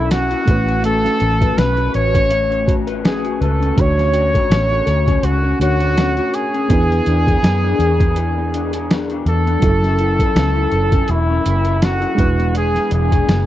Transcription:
Already playing: B1 F#3 C#4 E4 A4
0.11 C#4 F#4, snare, closed hi-hat
0.31 E4, closed hi-hat
0.45 A1 A3 B3 F#4, kick, closed hi-hat
0.51 C#4 B4
0.68 C#4, closed hi-hat
0.83 A3 A4, closed hi-hat
1.04 C#4, snare, closed hi-hat
1.20 A1 F#4, closed hi-hat
1.41 B4, kick, closed hi-hat
1.58 B1 C#4 B4, snare, closed hi-hat
1.77 F#4, closed hi-hat
1.93 A1 B4 C#5, closed hi-hat
2.15 C#4, kick, closed hi-hat
2.31 A3, closed hi-hat
2.49 C#4, closed hi-hat
2.67 F#4, kick, closed hi-hat
2.87 B4, closed hi-hat
3.04 C#4 G#4, snare, closed hi-hat
3.24 F#4, closed hi-hat
3.41 C#2 A4 B4, closed hi-hat
3.60 C#4, closed hi-hat
3.76 D2 D3 A3 D4 F#4 C#5, kick, closed hi-hat
3.81 C#5
3.97 C#4, snare, closed hi-hat
4.13 F#4, closed hi-hat
4.34 A4, kick, closed hi-hat
4.49 A1 C#4, snare, closed hi-hat
4.71 F#4
4.85 D2 A4, closed hi-hat
5.07 C#4, kick, closed hi-hat
5.23 C#2 F#4, closed hi-hat
5.44 C#4
5.60 D2 A3 D4 F#4 C#5, closed hi-hat
5.80 A4, closed hi-hat
5.97 C#4, snare, closed hi-hat
6.17 F#4, closed hi-hat
6.34 G#4, closed hi-hat
6.54 C#4, closed hi-hat
6.69 E2 E3 B3 D4 E4, kick, closed hi-hat
6.73 B4
6.91 B3, snare, closed hi-hat
7.06 E2 D4, closed hi-hat
7.27 G#4, kick, closed hi-hat
7.42 F#2 B3, snare, closed hi-hat
7.63 D4
7.79 E2 G#4, closed hi-hat
8.00 B3, kick, closed hi-hat
8.16 E3, closed hi-hat
8.38 B3
8.54 D4, closed hi-hat
8.73 G#4, closed hi-hat
8.90 B3, snare, closed hi-hat
9.10 D4, closed hi-hat
9.26 E2 A4, closed hi-hat
9.46 B3, closed hi-hat
9.60 F#1 F#3 C#4 E4, kick, closed hi-hat
9.64 A4
9.83 C#4, snare, closed hi-hat
9.99 E4, closed hi-hat
10.19 A4, kick, closed hi-hat
10.36 C#2 C#4, snare, closed hi-hat
10.56 E4
10.72 F#1 A4, closed hi-hat
10.92 C#4, kick, closed hi-hat
11.08 E1 F#3 E4, closed hi-hat
11.29 C#4
11.45 F#1 E4, closed hi-hat
11.65 A4, closed hi-hat
11.81 C#4 F#4, snare, closed hi-hat
12.00 E4, closed hi-hat
12.15 E1 G#3 D4 E4, kick, closed hi-hat
12.19 E3 B4
12.38 B3, closed hi-hat
12.54 E3 G#4, closed hi-hat
12.75 B3, snare, closed hi-hat
12.90 E1 D4 G#4, closed hi-hat
13.11 G#4, kick, closed hi-hat
13.26 F#1 B3, snare, closed hi-hat

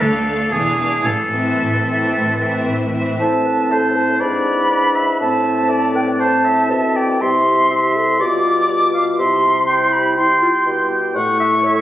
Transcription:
0.00 D2 A3 D4 A4 F5
0.26 A3 D4 F5
0.52 E1 E2 E3 D4 G#4 F5
0.78 E3 D4 F5
1.06 A1 A2 A4
1.32 E3 C4 E5
1.59 A2
1.86 E3 C4 E5
2.13 A2
2.39 E3 C4 E5
2.67 A2
2.93 E3 C4 E5
3.20 A2 C4 E4 C5 E5 A5
3.45 B4
3.71 A4 C5
3.96 C5 A5
4.20 G#2 D4 B4 D5 B5
4.70 B4 D5
4.96 E5
5.20 A2 C4 C5 E5 A5
5.69 A4 D5
5.95 B4 G5
6.19 C5 A5
6.45 E5
6.70 B2 A4 E5
6.96 D5 G5
7.21 C3 G3 E4 G4 E5 C6
7.71 G4 E5
7.96 A4 C6
8.20 B2 F4 G4 D5 D6
8.45 F4
8.68 G4 D5
8.94 F5
9.18 C3 E4 G4 E5 C6
9.67 E4 G5
9.92 B5
10.16 E4 G5 C6
10.42 F4
10.66 B2 G4
11.15 A2 A3 E4 A4 F#5 C#6
11.40 E5
11.64 C#5 E5

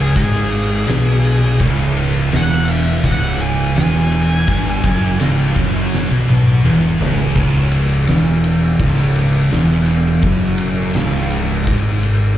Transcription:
Already playing: C#1 C#2
0.00 G#4
0.15 G#1 G#2 G#4, kick, ride
0.52 ride
0.87 B1 B2, snare, ride
1.25 ride
1.60 C#1 C#2, kick, crash
1.97 ride
2.32 E1 E2, snare, ride
2.36 F#5
2.68 E5, ride
3.03 C#1 C#2 F#5, kick, ride
3.40 G#5, ride
3.75 E1 E2 G#5, snare, ride
4.12 ride
4.48 G1 G2, kick, ride
4.84 F#1 F#2, kick, ride
5.19 C#1 C#2, snare, ride
5.55 F#1 F#2, kick, ride
5.95 snare
6.10 B1 B2
6.29 B1 B2, high tom
6.47 high tom
6.64 E1 E2, mid tom
6.99 C#1 C#2, floor tom
7.18 floor tom
7.35 C#1 C#2, kick, crash
7.71 ride
8.07 E1 E2, snare, ride
8.44 ride
8.79 C#1 C#2, kick, ride
9.16 ride
9.51 E1 E2, snare, ride
9.86 ride
10.22 F#1 F#2, kick, ride
10.58 ride
10.94 C#1 C#2, snare, ride
11.30 ride
11.67 G#1 G#2, kick, ride
12.03 ride

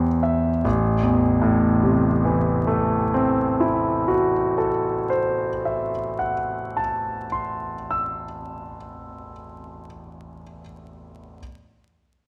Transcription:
Already playing: A1 E2 G4 C5 E5 E6 G6 A6 C7
0.23 E5
0.64 A1
1.03 E2
1.42 A2
1.83 C3
2.25 E3
2.67 A3
3.14 C4
3.60 E4
4.08 F#4
4.58 A4
5.10 C5
5.65 E5
6.19 F#5
6.77 A5
7.32 C6
7.91 E6

